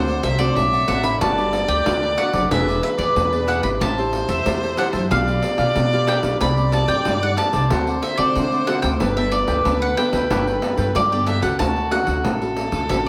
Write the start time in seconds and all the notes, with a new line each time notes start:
Already playing: D2 D3 A3 C4 F#4 C5 F#5
0.08 C5 D5 F#5, pandeiro
0.23 C2 E5, muted cavaquinho stroke, pandeiro
0.38 A3 C4 F#4 C5 D5 F#5, pandeiro
0.56 B1 A2 E5, pandeiro
0.73 C5 D5 F#5, pandeiro
0.88 A1 A3 C4 D4 F#4 C5 D5 F#5, pandeiro
1.03 C5 D5 F#5 B5, pandeiro
1.21 G1 G3 D4 F#4 G4 B4 D5 A5, pandeiro
1.38 D4 F#4 G4 B4 D5, pandeiro
1.53 muted cavaquinho stroke, pandeiro
1.68 D2 G4 B4 D5 G5, pandeiro
1.86 D2 D3 D4 F#4 G4 B4, pandeiro
2.03 pandeiro
2.17 D4 F#4 G4 B4 D5 F#5, pandeiro
2.33 F#1 G4 B4 D5, pandeiro
2.50 E1 E3 D4 E4 G#4 B4 D5 E5, pandeiro
2.68 G#4 B4 D5, pandeiro
2.83 D4 G#4 B4 E5, muted cavaquinho stroke, pandeiro
2.97 E2 G#4 B4 D5, pandeiro
3.16 E2 B2, pandeiro
3.32 D4 G#4 B4 D5, pandeiro
3.47 E4 G#4 B4 D5 F#5, pandeiro
3.63 G#1 E4 G4 G#4 B4 C5 D5 B5, pandeiro
3.80 A1 A3 G4 C5 E5 A5, pandeiro
3.98 E4 G4 C5 E5 A5, pandeiro
4.13 muted cavaquinho stroke, pandeiro
4.28 E2 C5 E5 A5, pandeiro
4.46 E2 E3 E4 G4 C5 E5 A5, pandeiro
4.63 pandeiro
4.77 E4 G4 C5 E5 F#5 A5, pandeiro
4.92 F#2 C5 E5 A5, pandeiro
5.10 B1 B3 D4 F4 G4 B4 D5 F5, pandeiro
5.27 G4 B4 F5, pandeiro
5.42 F4 G4 D5, muted cavaquinho stroke, pandeiro
5.58 B2 G4 B4 F5, pandeiro
5.75 B2 B3, pandeiro
5.93 F4 G4 B4 D5 F5, pandeiro
6.07 D4 G4 B4 F5 G5, pandeiro
6.22 B1 D#4 G4 B4 D5 F5, pandeiro
6.40 C2 C4 D#4 G4 C5 D5 B5, pandeiro
6.57 G4 C5 D5, pandeiro
6.72 D#4 G4 D5 A5, muted cavaquinho stroke, pandeiro
6.88 G2 G4 C5 D5 G5, pandeiro
7.05 G2 G3 D#4 G4 C5 D5, pandeiro
7.22 D#4 G4 D5 F#5, pandeiro
7.37 D#4 G4 C5 D5 A5, pandeiro
7.53 C2 G4 C5 D5, pandeiro
7.70 D2 D3 C4 D4 F#4 A4 C5 D5 F#5, pandeiro
7.87 C5 D5 F#5, pandeiro
8.02 E5, muted cavaquinho stroke, pandeiro
8.18 D3 C4 F#4 A4 C5 D5 F#5, pandeiro
8.35 D3 A3, pandeiro
8.52 C5 D5 F#5, pandeiro
8.67 C4 D4 F#4 A4 C5 D5 F#5, pandeiro
8.82 D2 C5 D5 F#5 G5, pandeiro
9.00 G1 G3 B3 D4 A4 B4 G5, pandeiro
9.17 B3 D4 A4 B4 E5 G5, pandeiro
9.32 D5, muted cavaquinho stroke, pandeiro
9.47 D2 A4 B4 G5, pandeiro
9.65 D2 D3 B3 D4 A4 B4 G5, pandeiro
9.82 F#5, pandeiro
9.97 B3 D4 A4 B4 G5, pandeiro
10.13 D2 A4 B4 G5, pandeiro
10.30 G1 G3 B3 D4 A4 B4 G5, pandeiro
10.47 A4 G5, pandeiro
10.62 B3 D4 A4, muted cavaquinho stroke, pandeiro
10.77 G2 A4 B4 G5, pandeiro
10.95 G2 D3 G4 D5, pandeiro
11.12 B3 D4 A4 B4 D5 G5, pandeiro
11.26 D4 A4 B4 E5 G5, pandeiro
11.42 C#2 C#4 F#4 A4 B4 F#5 G5, pandeiro
11.59 D2 D3 F#4 A5, pandeiro
11.76 pandeiro
11.91 C#4 F#4 A4 F#5, pandeiro
12.07 D2, pandeiro
12.24 A1 A3 A4, pandeiro
12.41 C#4 F#4 A4, pandeiro
12.57 pandeiro
12.72 D2 C#4 F#4 A4, pandeiro
12.89 A1 D3 C#4 F#4 A4 E5, pandeiro